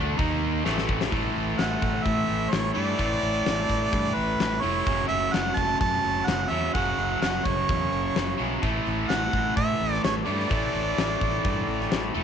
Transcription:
0.00 0.17 D2 medium
0.00 0.17 D3 medium
0.00 0.17 A3 medium
0.00 0.18 D4 loud
0.17 0.62 D#2 medium
0.17 0.64 D#3 medium
0.17 0.64 A#3 loud
0.17 0.65 D#4 medium
0.17 kick loud
0.17 open hi-hat soft
0.65 1.09 A1 medium
0.65 1.10 A2 medium
0.65 1.11 E3 medium
0.65 1.12 A3 loud
0.65 snare medium
0.78 snare medium
0.89 kick medium
1.01 snare medium
1.11 1.29 A1 medium
1.11 2.74 A2 medium
1.11 2.75 E3 medium
1.11 2.74 A3 medium
1.11 kick loud
1.11 open hi-hat medium
1.36 1.53 A1 medium
1.36 open hi-hat soft
1.58 1.76 A1 medium
1.58 2.06 F#5 medium
1.58 snare medium
1.58 open hi-hat medium
1.82 1.99 A1 medium
1.82 kick medium
1.82 open hi-hat soft
2.04 2.23 A2 medium
2.04 2.52 E5 medium
2.04 kick medium
2.04 open hi-hat medium
2.29 2.47 A1 medium
2.29 open hi-hat medium
2.50 2.70 A1 medium
2.50 2.73 C#5 medium
2.50 snare loud
2.50 open hi-hat medium
2.73 2.93 G2 medium
2.73 2.97 A2 medium
2.73 2.98 E3 medium
2.73 3.00 A3 medium
2.73 4.15 D5 medium
2.73 open hi-hat soft
2.98 3.16 A1 medium
2.98 4.62 A2 medium
2.98 4.62 E3 medium
2.98 4.62 A3 medium
2.98 kick medium
2.98 open hi-hat medium
3.23 3.40 A1 medium
3.23 open hi-hat soft
3.46 3.63 A1 medium
3.46 snare loud
3.46 open hi-hat medium
3.70 3.87 A1 medium
3.70 kick medium
3.70 open hi-hat soft
3.92 4.10 G2 medium
3.92 kick loud
3.92 open hi-hat medium
4.14 4.34 A1 medium
4.14 4.62 B4 medium
4.14 open hi-hat soft
4.40 4.57 A1 medium
4.40 snare loud
4.40 open hi-hat medium
4.61 4.80 F1 medium
4.61 4.86 A2 soft
4.61 4.86 E3 medium
4.61 8.12 A3 medium
4.61 5.07 C#5 medium
4.61 open hi-hat soft
4.86 5.04 F#1 medium
4.86 6.49 F#2 medium
4.86 6.50 C#3 medium
4.86 6.49 F#3 medium
4.86 kick loud
4.86 open hi-hat medium
5.08 5.27 F#1 medium
5.08 5.34 E5 medium
5.08 open hi-hat soft
5.33 5.51 F#1 medium
5.33 5.58 F#5 medium
5.33 snare loud
5.33 open hi-hat medium
5.56 5.74 F#1 medium
5.56 5.80 A5 loud
5.56 kick medium
5.56 open hi-hat soft
5.80 5.98 F#2 medium
5.80 6.28 A5 loud
5.80 kick loud
5.80 open hi-hat medium
6.05 6.22 F#1 medium
6.05 open hi-hat soft
6.26 6.45 F#1 medium
6.26 6.51 F#5 loud
6.26 snare loud
6.26 open hi-hat medium
6.49 6.68 E2 medium
6.49 6.73 F#2 soft
6.49 6.74 C#3 medium
6.49 6.73 F#3 medium
6.49 6.73 E5 medium
6.49 open hi-hat medium
6.74 6.92 F#1 medium
6.74 8.38 F#2 medium
6.74 8.38 C#3 medium
6.74 8.37 F#3 medium
6.74 7.18 F#5 medium
6.74 kick loud
6.74 open hi-hat medium
6.98 7.15 F#1 medium
6.98 open hi-hat soft
7.21 7.38 F#1 medium
7.21 7.47 F#5 medium
7.21 snare medium
7.21 open hi-hat medium
7.45 7.63 F#1 medium
7.45 8.40 C#5 medium
7.45 kick medium
7.45 open hi-hat soft
7.69 7.86 E2 medium
7.69 kick loud
7.69 open hi-hat medium
7.92 8.09 F#1 medium
7.92 open hi-hat soft
8.16 8.33 F#1 medium
8.16 snare loud
8.16 open hi-hat medium
8.38 8.57 B1 medium
8.38 8.62 F#2 medium
8.38 8.61 C#3 medium
8.38 8.61 F#3 medium
8.38 open hi-hat soft
8.61 8.80 A1 medium
8.61 10.25 A2 medium
8.61 10.25 E3 medium
8.61 10.25 A3 medium
8.61 kick medium
8.61 open hi-hat medium
8.86 9.04 A1 medium
8.86 open hi-hat soft
9.09 9.27 A1 medium
9.09 9.53 F#5 medium
9.09 snare medium
9.09 open hi-hat medium
9.33 9.50 A1 medium
9.33 kick medium
9.33 open hi-hat medium
9.57 9.74 A2 medium
9.57 10.00 E5 medium
9.57 kick loud
9.57 open hi-hat medium
9.80 9.98 A1 medium
9.80 open hi-hat soft
9.93 snare soft
10.04 10.21 A1 medium
10.04 10.15 C#5 medium
10.04 snare loud
10.04 open hi-hat medium
10.25 10.45 G2 medium
10.25 10.48 A2 soft
10.25 10.49 E3 medium
10.25 10.50 A3 medium
10.25 12.10 D5 medium
10.25 open hi-hat soft
10.40 snare soft
10.49 10.68 A1 medium
10.49 12.13 A2 medium
10.49 12.14 E3 medium
10.49 12.14 A3 medium
10.49 kick loud
10.49 open hi-hat medium
10.75 10.92 A1 medium
10.75 open hi-hat medium
10.98 11.15 A1 medium
10.98 snare loud
10.98 open hi-hat medium
11.21 11.38 A1 medium
11.21 kick medium
11.21 open hi-hat medium
11.45 11.62 G2 medium
11.45 kick loud
11.45 open hi-hat medium
11.68 11.85 A1 medium
11.68 open hi-hat soft
11.81 snare soft
11.91 12.09 A1 medium
11.91 snare loud
11.91 open hi-hat medium
12.14 12.23 E1 medium
12.14 12.23 A2 medium
12.14 12.23 E3 medium
12.14 12.23 A3 medium
12.14 open hi-hat soft

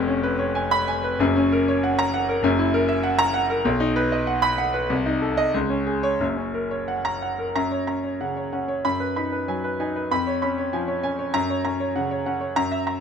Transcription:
0.00 1.16 F1 medium
0.00 1.16 F2 medium
0.08 0.34 C#4 medium
0.23 0.49 B4 medium
0.39 0.65 C#5 medium
0.55 0.81 G#5 medium
0.71 0.98 B5 loud
0.88 1.14 G#5 medium
1.04 1.20 B4 medium
1.19 2.40 F#1 loud
1.19 2.41 F#2 loud
1.37 1.62 C#4 medium
1.52 1.77 A#4 medium
1.68 1.93 C#5 medium
1.83 2.08 F#5 medium
1.99 2.23 A#5 loud
2.14 2.38 F#5 medium
2.29 2.44 A#4 medium
2.43 3.61 F#1 medium
2.43 3.61 F#2 loud
2.59 2.83 E4 medium
2.74 2.98 A#4 medium
2.88 3.13 E5 medium
3.03 3.28 F#5 medium
3.19 3.43 A#5 loud
3.34 3.59 F#5 loud
3.50 3.65 A#4 medium
3.65 4.87 B1 loud
3.80 4.05 D#4 medium
3.96 4.21 B4 medium
4.12 4.37 D#5 medium
4.27 4.52 F#5 medium
4.42 4.68 B5 loud
4.58 4.84 F#5 loud
4.74 4.90 B4 medium
4.90 5.52 C2 loud
5.06 5.32 D#4 medium
5.22 5.48 A4 medium
5.37 5.54 D#5 loud
5.54 6.19 C#2 medium
5.70 5.97 C#4 medium
5.87 6.14 G#4 medium
6.03 6.21 C#5 medium
6.20 7.51 F#1 medium
6.20 7.51 F#2 medium
6.37 6.65 C#4 medium
6.54 6.81 A#4 medium
6.71 6.98 C#5 medium
6.88 7.15 F#5 medium
7.05 7.32 A#5 medium
7.22 7.49 F#5 medium
7.39 7.55 A#4 medium
7.56 8.81 F#2 medium
7.56 7.81 A#5 medium
7.71 7.98 C#5 medium
7.87 8.40 C#4 medium
7.87 8.14 A#5 medium
8.04 8.30 C#5 medium
8.21 8.72 C#3 medium
8.21 8.46 F#5 medium
8.37 8.62 C#5 medium
8.53 8.85 C#4 medium
8.53 8.78 F#5 medium
8.68 8.85 C#5 medium
8.85 10.07 F#2 medium
8.85 9.10 B5 medium
9.00 9.26 B4 medium
9.16 9.67 D#4 medium
9.16 9.42 B5 medium
9.32 9.57 B4 medium
9.48 9.99 F#3 medium
9.48 9.73 G#5 medium
9.64 9.89 B4 medium
9.80 10.11 D#4 medium
9.80 10.05 G#5 medium
9.96 10.11 B4 medium
10.11 11.30 F2 medium
10.11 10.36 B5 medium
10.27 10.52 C#5 medium
10.42 10.91 C#4 medium
10.42 10.67 B5 medium
10.58 10.82 C#5 medium
10.73 11.22 F3 medium
10.73 10.97 G#5 medium
10.88 11.12 C#5 medium
11.03 11.34 C#4 medium
11.03 11.28 G#5 medium
11.19 11.34 C#5 medium
11.34 12.54 F#2 medium
11.34 11.59 A#5 loud
11.50 11.74 C#5 medium
11.65 12.14 C#4 medium
11.65 11.90 A#5 medium
11.80 12.05 C#5 medium
11.96 12.45 C#3 medium
11.96 12.20 F#5 medium
12.11 12.36 C#5 medium
12.26 12.57 C#4 medium
12.26 12.51 F#5 medium
12.41 12.56 C#5 medium
12.56 13.00 F#2 medium
12.56 12.81 A#5 loud
12.72 12.96 E5 medium
12.87 13.00 A#5 medium

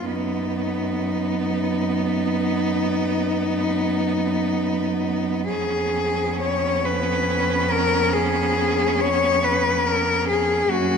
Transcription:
0.05 5.51 F#2 soft
0.05 5.45 B3 soft
0.05 5.46 B3 soft
0.05 5.48 D#4 medium
5.49 10.69 F2 soft
5.49 10.66 B3 soft
5.49 10.65 C#4 soft
5.49 6.40 G#4 medium
6.41 6.87 C#5 medium
6.85 7.73 B4 medium
7.72 8.15 A#4 medium
8.13 9.02 G#4 medium
9.00 9.45 C#5 medium
9.44 9.88 B4 medium
9.87 10.28 A#4 medium
10.30 10.72 G#4 medium
10.69 10.98 F#2 medium
10.69 10.98 A#3 medium
10.69 10.98 C#4 medium
10.69 10.98 F#4 medium

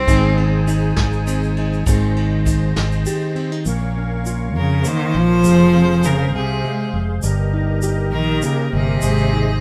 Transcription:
0.00 0.54 C4 loud
0.07 0.93 G#1 loud
0.07 0.96 G#2 medium
0.07 1.87 D#3 medium
0.07 0.36 C4 medium
0.07 1.85 D#4 medium
0.07 0.67 D#4 medium
0.07 1.85 G#4 medium
0.07 1.84 G#4 medium
0.07 1.85 C5 medium
0.07 1.85 G#5 medium
0.07 kick medium
0.07 ride medium
0.07 shaker medium
0.37 1.26 C4 medium
0.37 ride medium
0.67 1.57 D#4 medium
0.67 ride medium
0.67 shaker medium
0.96 1.82 G#1 loud
0.96 muted nylon-string guitar stroke medium
0.96 kick medium
0.96 snare medium
0.96 ride medium
1.12 shaker soft
1.27 1.83 C4 medium
1.27 ride medium
1.27 shaker medium
1.43 shaker soft
1.57 1.84 D#4 medium
1.57 ride medium
1.73 shaker soft
1.86 2.72 G#1 medium
1.86 2.74 G#2 medium
1.86 3.66 D#3 medium
1.86 3.64 G#3 medium
1.86 3.34 C4 medium
1.86 2.46 D#4 medium
1.86 3.06 G#4 medium
1.86 3.64 C5 medium
1.86 3.64 D#5 medium
1.86 3.64 C6 medium
1.86 kick loud
1.86 ride medium
1.86 shaker loud
2.16 ride medium
2.46 3.35 D#4 medium
2.46 kick medium
2.46 ride medium
2.46 shaker medium
2.76 3.05 G#1 medium
2.76 muted nylon-string guitar stroke medium
2.76 snare loud
2.76 ride medium
2.76 shaker soft
2.92 shaker soft
3.06 3.62 G4 medium
3.06 ride medium
3.06 shaker loud
3.35 3.52 C4 medium
3.35 ride medium
3.52 3.66 D#4 medium
3.66 4.55 A#1 medium
3.66 4.55 A#2 medium
3.66 5.43 A#4 medium
3.66 5.43 C#5 medium
3.66 7.20 F5 medium
3.66 5.43 C#6 medium
3.66 shaker medium
3.97 5.42 C#4 medium
4.26 6.04 F4 medium
4.26 shaker medium
4.55 4.83 F2 loud
4.55 4.88 C#3 medium
4.55 4.89 A#4 medium
4.55 muted nylon-string guitar stroke medium
4.85 5.18 D#3 loud
4.85 5.41 A#3 medium
4.85 5.16 C5 medium
4.85 shaker loud
5.15 5.43 A#1 medium
5.15 6.06 F3 loud
5.15 6.06 C5 loud
5.44 6.34 F1 medium
5.44 6.32 F2 medium
5.44 7.22 G#4 medium
5.44 7.22 C5 medium
5.44 7.22 C6 medium
5.44 shaker loud
5.75 7.24 C4 medium
6.03 6.34 C#3 loud
6.03 7.19 G#4 medium
6.03 6.34 A#4 medium
6.03 shaker loud
6.33 6.62 C2 loud
6.33 6.97 C3 medium
6.33 6.97 G#4 medium
6.33 muted nylon-string guitar stroke medium
6.65 7.24 G#3 medium
6.94 7.22 F1 loud
7.23 8.13 G1 loud
7.23 8.11 G2 medium
7.23 9.00 G4 medium
7.23 9.00 A#4 medium
7.23 9.61 D#5 medium
7.23 9.00 A#5 medium
7.23 shaker loud
7.53 8.98 D#4 medium
7.82 8.98 G4 medium
7.82 shaker loud
8.12 8.41 A#1 loud
8.12 8.44 D#3 medium
8.12 8.44 A#4 medium
8.12 muted nylon-string guitar stroke medium
8.42 8.72 C#3 medium
8.42 8.99 A#3 medium
8.42 8.73 A#4 medium
8.42 shaker loud
8.73 9.01 G1 medium
8.73 9.61 C3 loud
8.73 9.61 G#4 medium
9.01 9.61 G#1 loud
9.01 9.61 G#2 medium
9.01 9.61 G#4 medium
9.01 9.61 C5 medium
9.01 9.61 C6 medium
9.01 shaker medium
9.17 shaker soft
9.33 9.61 D#4 medium

